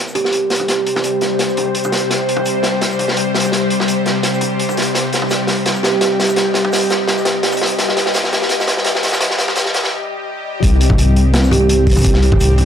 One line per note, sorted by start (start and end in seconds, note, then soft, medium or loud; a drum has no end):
0.00 10.59 C3 medium
0.00 10.59 G3 medium
0.00 10.59 G4 medium
0.00 4.93 C5 medium
0.08 shaker medium
0.15 0.21 G4 medium
0.15 closed hi-hat medium
0.15 mid tom soft
0.24 0.30 G4 medium
0.24 snare soft
0.33 closed hi-hat medium
0.50 snare medium
0.50 closed hi-hat medium
0.55 closed hi-hat medium
0.60 mid tom medium
0.68 snare medium
0.68 closed hi-hat medium
0.86 closed hi-hat medium
0.96 snare soft
0.96 mid tom medium
1.04 closed hi-hat medium
1.04 shaker medium
1.21 snare soft
1.21 closed hi-hat medium
1.21 mid tom soft
1.39 snare soft
1.39 closed hi-hat medium
1.49 shaker soft
1.57 closed hi-hat medium
1.57 mid tom soft
1.75 closed hi-hat medium
1.84 mid tom medium
1.84 shaker medium
1.92 snare medium
1.92 closed hi-hat medium
1.97 closed hi-hat medium
2.10 snare medium
2.10 closed hi-hat medium
2.29 closed hi-hat medium
2.37 mid tom medium
2.45 closed hi-hat medium
2.45 shaker medium
2.63 snare medium
2.63 closed hi-hat medium
2.81 snare medium
2.81 closed hi-hat medium
2.91 shaker medium
2.99 closed hi-hat medium
2.99 mid tom medium
3.08 snare medium
3.10 snare soft
3.12 snare soft
3.14 snare soft
3.14 closed hi-hat medium
3.35 snare medium
3.35 closed hi-hat medium
3.40 closed hi-hat medium
3.44 mid tom soft
3.44 shaker medium
3.52 snare medium
3.52 closed hi-hat medium
3.70 closed hi-hat medium
3.80 snare medium
3.80 mid tom medium
3.88 closed hi-hat medium
3.88 shaker medium
4.06 snare medium
4.06 closed hi-hat soft
4.06 mid tom soft
4.23 snare medium
4.23 closed hi-hat medium
4.34 shaker medium
4.41 closed hi-hat medium
4.41 mid tom soft
4.59 closed hi-hat medium
4.69 mid tom medium
4.69 shaker medium
4.77 snare medium
4.77 closed hi-hat medium
4.82 closed hi-hat medium
4.95 10.61 D#5 medium
4.95 snare medium
4.95 closed hi-hat medium
5.13 snare medium
5.13 closed hi-hat medium
5.22 mid tom medium
5.30 snare medium
5.30 closed hi-hat medium
5.30 shaker medium
5.47 snare medium
5.47 closed hi-hat soft
5.50 closed hi-hat soft
5.52 closed hi-hat soft
5.55 closed hi-hat soft
5.57 closed hi-hat soft
5.60 closed hi-hat soft
5.62 closed hi-hat soft
5.64 closed hi-hat soft
5.66 snare medium
5.66 closed hi-hat medium
5.75 shaker soft
5.83 5.89 G4 medium
5.83 snare medium
5.83 closed hi-hat medium
5.83 mid tom soft
5.92 5.98 G4 medium
6.01 snare medium
6.01 closed hi-hat medium
6.20 snare medium
6.20 closed hi-hat medium
6.24 closed hi-hat medium
6.29 mid tom medium
6.29 shaker medium
6.36 snare medium
6.36 closed hi-hat medium
6.54 snare medium
6.54 closed hi-hat medium
6.65 mid tom medium
6.73 snare medium
6.73 closed hi-hat medium
6.73 shaker medium
6.76 closed hi-hat medium
6.78 closed hi-hat medium
6.81 closed hi-hat soft
6.83 closed hi-hat soft
6.85 closed hi-hat soft
6.87 closed hi-hat soft
6.89 snare medium
6.89 closed hi-hat soft
6.89 closed hi-hat medium
6.89 mid tom soft
7.08 snare medium
7.08 closed hi-hat medium
7.18 shaker medium
7.25 snare medium
7.25 closed hi-hat medium
7.25 mid tom medium
7.43 snare medium
7.43 closed hi-hat medium
7.52 mid tom medium
7.52 shaker medium
7.57 closed hi-hat medium
7.62 snare medium
7.66 closed hi-hat medium
7.79 snare medium
7.79 closed hi-hat medium
7.89 snare medium
7.97 snare medium
7.97 closed hi-hat medium
8.06 snare medium
8.06 mid tom soft
8.12 snare medium
8.12 closed hi-hat medium
8.12 mid tom soft
8.12 shaker medium
8.17 mid tom medium
8.24 snare medium
8.33 snare loud
8.33 closed hi-hat medium
8.42 snare medium
8.49 snare medium
8.49 closed hi-hat medium
8.60 snare medium
8.60 shaker medium
8.67 snare loud
8.67 closed hi-hat medium
8.67 mid tom medium
8.77 snare medium
8.84 snare loud
8.84 closed hi-hat medium
8.95 snare medium
9.03 snare loud
9.03 closed hi-hat medium
9.08 closed hi-hat medium
9.12 snare medium
9.12 mid tom medium
9.12 shaker medium
9.21 snare loud
9.21 closed hi-hat loud
9.30 snare medium
9.38 snare loud
9.38 closed hi-hat medium
9.48 snare medium
9.48 mid tom medium
9.55 snare loud
9.55 closed hi-hat medium
9.55 shaker medium
9.65 snare medium
9.74 snare loud
9.74 closed hi-hat medium
9.74 mid tom soft
9.84 snare loud
10.63 11.95 C2 loud
10.63 12.65 G3 medium
10.63 12.65 C4 medium
10.63 12.65 G4 medium
10.63 kick loud
10.63 closed hi-hat medium
10.81 closed hi-hat medium
10.90 kick loud
10.90 mid tom medium
10.98 closed hi-hat medium
10.98 shaker medium
11.16 closed hi-hat medium
11.34 snare loud
11.34 closed hi-hat medium
11.44 shaker medium
11.51 11.58 G4 medium
11.51 closed hi-hat medium
11.51 mid tom medium
11.61 11.66 G4 medium
11.69 closed hi-hat loud
11.87 kick medium
11.87 closed hi-hat soft
11.90 closed hi-hat soft
11.91 closed hi-hat medium
11.93 closed hi-hat soft
11.93 mid tom medium
11.96 12.31 C2 medium
11.96 closed hi-hat soft
11.96 shaker medium
11.99 closed hi-hat medium
12.02 closed hi-hat medium
12.04 kick loud
12.04 closed hi-hat loud
12.13 snare soft
12.22 closed hi-hat medium
12.32 12.65 C2 medium
12.32 kick loud
12.32 mid tom medium
12.40 closed hi-hat medium
12.40 shaker medium
12.58 closed hi-hat medium
12.58 mid tom soft